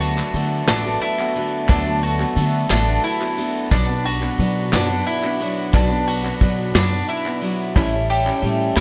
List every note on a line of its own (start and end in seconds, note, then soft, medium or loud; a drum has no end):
0.00 0.20 D2 loud
0.00 1.65 D2 medium
0.00 1.65 D3 medium
0.00 1.65 F#3 medium
0.00 0.18 A3 soft
0.00 0.17 B3 medium
0.00 1.65 B3 medium
0.00 1.65 D4 medium
0.00 0.15 F#4 medium
0.00 3.68 F#4 medium
0.00 0.67 F#4 medium
0.00 1.65 A4 medium
0.00 7.72 B4 medium
0.00 1.66 D5 medium
0.00 1.68 D5 medium
0.00 3.68 A5 medium
0.00 ride medium
0.16 0.33 A3 medium
0.16 0.35 B3 soft
0.16 0.34 F#4 medium
0.16 clap medium
0.34 0.67 D3 medium
0.34 0.61 D3 medium
0.34 0.67 A3 medium
0.34 0.68 B3 medium
0.34 0.69 F#4 medium
0.34 ride medium
0.67 0.94 A1 medium
0.67 0.85 D3 medium
0.67 0.85 A3 loud
0.67 0.86 B3 medium
0.67 1.01 D4 medium
0.67 0.84 F#4 medium
0.67 snare loud
0.67 clap loud
0.67 ride medium
0.86 1.20 A3 medium
0.86 1.20 B3 medium
0.86 1.18 F#4 medium
1.01 1.68 E4 medium
1.01 ride medium
1.19 1.35 A3 soft
1.19 1.36 B3 medium
1.19 1.36 F#4 medium
1.19 clap medium
1.36 1.68 D3 medium
1.36 1.69 A3 medium
1.36 1.70 B3 medium
1.36 1.70 F#4 medium
1.36 ride medium
1.68 3.67 D2 medium
1.68 2.22 D2 loud
1.68 3.67 D3 medium
1.68 1.86 D3 medium
1.68 3.67 F#3 medium
1.68 1.87 A3 loud
1.68 3.67 B3 medium
1.68 1.86 B3 medium
1.68 3.67 D4 medium
1.68 2.02 D4 loud
1.68 1.85 F#4 medium
1.68 3.68 A4 medium
1.68 3.68 D5 medium
1.68 3.69 E5 medium
1.68 kick loud
1.68 clap medium
1.68 ride medium
1.86 2.21 A3 soft
1.86 2.20 B3 medium
1.86 2.19 F#4 medium
2.03 2.69 F#4 medium
2.03 ride medium
2.20 2.36 A3 medium
2.20 2.37 B3 medium
2.20 2.37 F#4 medium
2.20 clap medium
2.36 2.69 D3 medium
2.36 2.63 D3 medium
2.36 2.70 A3 medium
2.36 2.70 B3 medium
2.36 2.71 F#4 medium
2.36 ride medium
2.70 2.97 A1 medium
2.70 2.87 D3 medium
2.70 2.88 A3 loud
2.70 2.87 B3 medium
2.70 3.03 D4 loud
2.70 2.86 F#4 loud
2.70 snare loud
2.70 clap loud
2.70 ride medium
2.87 3.22 A3 soft
2.87 3.21 B3 medium
2.87 3.20 F#4 medium
3.04 3.70 E4 medium
3.04 ride medium
3.21 3.37 A3 soft
3.21 3.38 B3 medium
3.21 3.38 F#4 medium
3.21 clap medium
3.37 3.71 D3 medium
3.37 3.72 A3 medium
3.37 3.71 B3 medium
3.37 3.72 F#4 medium
3.37 ride medium
3.70 5.69 B1 medium
3.70 4.25 B1 loud
3.70 3.88 B2 medium
3.70 5.69 B2 medium
3.70 5.69 F#3 medium
3.70 3.88 F#3 medium
3.70 5.69 B3 medium
3.70 3.88 B3 medium
3.70 4.04 D4 loud
3.70 5.69 D4 medium
3.70 3.87 D4 loud
3.70 7.71 F#4 medium
3.70 3.86 F#4 loud
3.70 5.69 B4 medium
3.70 7.71 D5 medium
3.70 5.70 D5 medium
3.70 7.71 B5 medium
3.70 kick loud
3.70 clap loud
3.70 ride medium
3.87 4.22 B3 medium
3.87 4.21 D4 medium
3.87 4.19 F#4 medium
4.05 4.71 F#4 medium
4.05 ride medium
4.21 4.38 B3 soft
4.21 4.39 D4 medium
4.21 4.38 F#4 medium
4.21 clap medium
4.38 4.66 B2 medium
4.38 4.72 F#3 medium
4.38 4.72 B3 medium
4.38 4.72 D4 medium
4.38 4.73 F#4 medium
4.38 ride medium
4.72 4.99 F#2 medium
4.72 4.89 B2 loud
4.72 4.90 F#3 medium
4.72 4.90 B3 medium
4.72 5.06 D4 medium
4.72 4.89 D4 medium
4.72 4.88 F#4 loud
4.72 snare loud
4.72 clap loud
4.72 ride medium
4.89 5.24 B3 soft
4.89 5.23 D4 medium
4.89 5.21 F#4 medium
5.07 5.72 E4 medium
5.07 ride medium
5.22 5.39 B3 soft
5.22 5.40 D4 medium
5.22 5.40 F#4 medium
5.22 clap medium
5.39 5.73 F#3 medium
5.39 5.73 B3 medium
5.39 5.73 D4 medium
5.39 5.74 F#4 medium
5.39 ride medium
5.73 6.27 B1 medium
5.73 7.72 B1 medium
5.73 5.90 B2 medium
5.73 7.71 B2 medium
5.73 7.71 F#3 medium
5.73 5.91 F#3 medium
5.73 7.71 B3 medium
5.73 5.91 B3 medium
5.73 7.71 D4 medium
5.73 6.07 D4 medium
5.73 5.89 D4 loud
5.73 5.88 F#4 loud
5.73 7.72 B4 medium
5.73 7.72 D5 medium
5.73 kick loud
5.73 clap loud
5.73 ride medium
5.89 6.24 B3 medium
5.89 6.23 D4 medium
5.89 6.22 F#4 medium
6.07 6.73 F#4 medium
6.07 ride medium
6.23 6.40 B3 soft
6.23 6.41 D4 medium
6.23 6.40 F#4 medium
6.23 clap medium
6.41 6.67 B2 medium
6.41 6.73 F#3 medium
6.41 6.74 B3 medium
6.41 6.74 D4 medium
6.41 6.75 F#4 medium
6.41 kick medium
6.41 clap soft
6.41 ride medium
6.74 7.01 F#2 medium
6.74 6.91 B2 medium
6.74 6.91 F#3 medium
6.74 6.92 B3 medium
6.74 7.08 D4 loud
6.74 6.91 D4 medium
6.74 6.89 F#4 loud
6.74 snare loud
6.74 clap loud
6.74 ride medium
6.91 7.26 B3 medium
6.91 7.25 D4 medium
6.91 7.24 F#4 medium
7.09 7.74 E4 medium
7.09 clap soft
7.09 ride medium
7.25 7.41 B3 soft
7.25 7.42 D4 soft
7.25 7.42 F#4 medium
7.25 clap medium
7.41 7.75 F#3 medium
7.41 7.76 B3 medium
7.41 7.76 D4 medium
7.41 7.76 F#4 medium
7.41 ride medium
7.75 8.80 A1 medium
7.75 8.29 A1 loud
7.75 8.80 A2 medium
7.75 7.92 A2 medium
7.75 7.93 E3 medium
7.75 8.80 G3 medium
7.75 7.93 G3 loud
7.75 8.80 C#4 medium
7.75 7.93 C#4 medium
7.75 8.80 E4 medium
7.75 8.09 E4 medium
7.75 7.92 E4 medium
7.75 8.80 A4 medium
7.75 8.80 C#5 medium
7.75 8.80 E5 medium
7.75 8.80 A5 medium
7.75 kick loud
7.75 clap loud
7.75 ride medium
7.93 8.26 G3 soft
7.93 8.25 C#4 soft
7.93 8.24 E4 medium
8.10 8.75 G4 medium
8.10 ride medium
8.25 8.41 G3 soft
8.25 8.42 C#4 medium
8.25 8.42 E4 medium
8.25 clap medium
8.42 8.69 A2 medium
8.42 8.76 E3 medium
8.42 8.76 G3 medium
8.42 8.77 C#4 medium
8.42 8.77 E4 medium
8.42 ride medium
8.76 8.80 E2 medium
8.76 8.80 A2 medium
8.76 8.80 E3 medium
8.76 8.80 G3 medium
8.76 8.80 E4 loud
8.76 snare loud
8.76 clap loud
8.76 ride medium